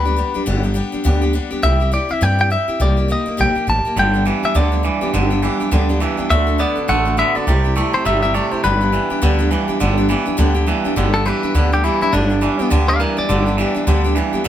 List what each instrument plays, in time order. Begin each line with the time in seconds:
Already playing: upright bass D2, clean electric guitar B4
0.05 steel-string acoustic guitar G3 B3 D4 G4
0.16 steel-string acoustic guitar G3 B3 D4 G4
0.34 steel-string acoustic guitar G3 B3 D4 G4, muted upright bass stroke
0.46 upright bass G1, steel-string acoustic guitar G2 D3 G3 B3 D4 G4
0.63 steel-string acoustic guitar G3 B3 D4 G4
0.74 steel-string acoustic guitar G3 B3 D4 G4
0.92 steel-string acoustic guitar G3 B3 D4 G4, muted upright bass stroke
1.04 upright bass D2, steel-string acoustic guitar G2 D3 G3 B3 D4 G4
1.21 steel-string acoustic guitar G3 B3 D4 G4
1.33 steel-string acoustic guitar G3 B3 D4 G4
1.51 steel-string acoustic guitar G3 B3 D4 G4, muted upright bass stroke
1.63 upright bass C2, steel-string acoustic guitar C3 G3 C4 E4 G4, clean electric guitar E5
1.80 steel-string acoustic guitar C4 E4 G4
1.92 steel-string acoustic guitar G3 C4 E4 G4, clean electric guitar D5
2.09 steel-string acoustic guitar C4 E4 G4, clean electric guitar E5, muted upright bass stroke
2.21 upright bass G2, steel-string acoustic guitar C3 G3 C4 E4 G4, clean electric guitar G5
2.39 steel-string acoustic guitar C4 E4 G4, clean electric guitar G5
2.50 steel-string acoustic guitar G3 C4 E4 G4, clean electric guitar E5
2.68 steel-string acoustic guitar C4 E4 G4, muted upright bass stroke
2.80 upright bass C2, steel-string acoustic guitar C3 G3 A#3 D#4 G4, clean electric guitar D5
2.97 steel-string acoustic guitar A#3 D#4 G4
3.08 steel-string acoustic guitar G3 A#3 D#4 G4, clean electric guitar D#5
3.26 steel-string acoustic guitar A#3 D#4 G4, muted upright bass stroke
3.37 upright bass A#1, steel-string acoustic guitar C3 G3 A#3 D#4 G4, clean electric guitar G5
3.55 steel-string acoustic guitar A#3 D#4 G4, muted upright bass stroke
3.67 upright bass A1, steel-string acoustic guitar G3 A#3 D#4 G4, clean electric guitar A5
3.85 steel-string acoustic guitar A#3 D#4 G4
3.96 upright bass G1, steel-string acoustic guitar G2 D3 G3 B3 D4 G4, clean electric guitar G5
4.14 steel-string acoustic guitar G3 B3 D4 G4
4.25 clean electric guitar G2 E3, steel-string acoustic guitar G3 B3 D4 G4
4.43 steel-string acoustic guitar G3 B3 D4 G4, clean electric guitar E5, muted upright bass stroke
4.55 upright bass D2, steel-string acoustic guitar G2 D3 G3 B3 D4 G4, clean electric guitar D5
4.72 steel-string acoustic guitar G3 B3 D4 G4
4.83 clean electric guitar G2 E3, steel-string acoustic guitar G3 B3 D4 G4
5.01 steel-string acoustic guitar G3 B3 D4 G4, muted upright bass stroke
5.14 upright bass G1, steel-string acoustic guitar G2 D3 G3 B3 D4 G4
5.30 steel-string acoustic guitar G3 B3 D4 G4
5.42 clean electric guitar G2 E3, steel-string acoustic guitar G3 B3 D4 G4
5.60 steel-string acoustic guitar G3 B3 D4 G4, muted upright bass stroke
5.71 upright bass D2, steel-string acoustic guitar G2 D3 G3 B3 D4 G4
5.89 steel-string acoustic guitar G3 B3 D4 G4
6.00 clean electric guitar G2 E3, steel-string acoustic guitar G3 B3 D4 G4
6.17 steel-string acoustic guitar G3 B3 D4 G4, muted upright bass stroke
6.30 upright bass D2, steel-string acoustic guitar D3 A3 D4 F#4 A4, clean electric guitar E5
6.47 steel-string acoustic guitar D4 F#4 A4
6.58 clean electric guitar D3 B3 D5, steel-string acoustic guitar A3 D4 F#4 A4
6.76 steel-string acoustic guitar D4 F#4 A4, muted upright bass stroke
6.88 upright bass A1, steel-string acoustic guitar D3 A3 D4 F#4 A4, clean electric guitar F#5
7.05 steel-string acoustic guitar D4 F#4 A4
7.17 clean electric guitar D3 B3 E5, steel-string acoustic guitar A3 D4 F#4 A4
7.35 steel-string acoustic guitar D4 F#4 A4, clean electric guitar D5, muted upright bass stroke
7.47 upright bass C2, steel-string acoustic guitar C3 G3 C4 E4 G4
7.64 steel-string acoustic guitar C4 E4 G4
7.76 clean electric guitar C3 A3, steel-string acoustic guitar G3 C4 E4 G4
7.93 steel-string acoustic guitar C4 E4 G4, clean electric guitar C5, muted upright bass stroke
8.05 upright bass G1, steel-string acoustic guitar C3 G3 C4 E4 G4, clean electric guitar E5
8.22 steel-string acoustic guitar C4 E4 G4, clean electric guitar E5
8.34 clean electric guitar C3 A3 D5, steel-string acoustic guitar G3 C4 E4 G4
8.51 steel-string acoustic guitar C4 E4 G4, clean electric guitar C5, muted upright bass stroke
8.64 upright bass G1, steel-string acoustic guitar G2 D3 G3 B3 D4 G4, clean electric guitar B4
8.81 steel-string acoustic guitar G3 B3 D4 G4
8.92 clean electric guitar G2 E3, steel-string acoustic guitar G3 B3 D4 G4
9.10 steel-string acoustic guitar G3 B3 D4 G4, muted upright bass stroke
9.22 upright bass D2, steel-string acoustic guitar G2 D3 G3 B3 D4 G4
9.39 steel-string acoustic guitar G3 B3 D4 G4
9.51 clean electric guitar G2 E3, steel-string acoustic guitar G3 B3 D4 G4
9.68 steel-string acoustic guitar G3 B3 D4 G4, muted upright bass stroke
9.80 upright bass G1, steel-string acoustic guitar G2 D3 G3 B3 D4 G4
9.97 steel-string acoustic guitar G3 B3 D4 G4
10.09 clean electric guitar G2 E3, steel-string acoustic guitar G3 B3 D4 G4
10.26 steel-string acoustic guitar G3 B3 D4 G4, muted upright bass stroke
10.37 upright bass D2, steel-string acoustic guitar G2 D3 G3 B3 D4 G4
10.54 steel-string acoustic guitar G3 B3 D4 G4
10.67 clean electric guitar G2 E3, steel-string acoustic guitar G3 B3 D4 G4
10.84 steel-string acoustic guitar G3 B3 D4 G4, muted upright bass stroke
10.96 upright bass G1, steel-string acoustic guitar G2 D3 G3 B3 D4 G4
11.13 steel-string acoustic guitar G3 B3 D4 G4, clean electric guitar A4
11.26 clean electric guitar G2 E3 B4, steel-string acoustic guitar G3 B3 D4 G4
11.43 steel-string acoustic guitar G3 B3 D4 G4, muted upright bass stroke
11.55 upright bass D2, steel-string acoustic guitar G2 D3 G3 B3 D4 G4
11.72 steel-string acoustic guitar G3 B3 D4 G4, clean electric guitar G4
11.83 clean electric guitar G2 E3 E4, steel-string acoustic guitar G3 B3 D4 G4
12.01 steel-string acoustic guitar G3 B3 D4 G4, clean electric guitar E4, muted upright bass stroke
12.12 upright bass G1, steel-string acoustic guitar G2 D3 G3 B3 D4 G4, clean electric guitar D4
12.30 steel-string acoustic guitar G3 B3 D4 G4
12.41 clean electric guitar G2 E3, steel-string acoustic guitar G3 B3 D4 G4
12.59 steel-string acoustic guitar G3 B3 D4 G4, muted upright bass stroke
12.70 upright bass D2, steel-string acoustic guitar G2 D3 G3 B3 D4 G4
12.88 steel-string acoustic guitar G3 B3 D4 G4, clean electric guitar D5 F5
12.99 clean electric guitar G2 E3 A#4 D5, steel-string acoustic guitar G3 B3 D4 G4
13.17 steel-string acoustic guitar G3 B3 D4 G4, clean electric guitar D5, muted upright bass stroke
13.29 upright bass G1, steel-string acoustic guitar G2 D3 G3 B3 D4 G4
13.46 steel-string acoustic guitar G3 B3 D4 G4
13.57 clean electric guitar G2 E3, steel-string acoustic guitar G3 B3 D4 G4
13.75 steel-string acoustic guitar G3 B3 D4 G4, muted upright bass stroke
13.87 upright bass D2, steel-string acoustic guitar G2 D3 G3 B3 D4 G4
14.04 steel-string acoustic guitar G3 B3 D4 G4
14.15 clean electric guitar G2 E3, steel-string acoustic guitar G3 B3 D4 G4
14.33 steel-string acoustic guitar G3 B3 D4 G4, muted upright bass stroke
14.44 steel-string acoustic guitar G2 D3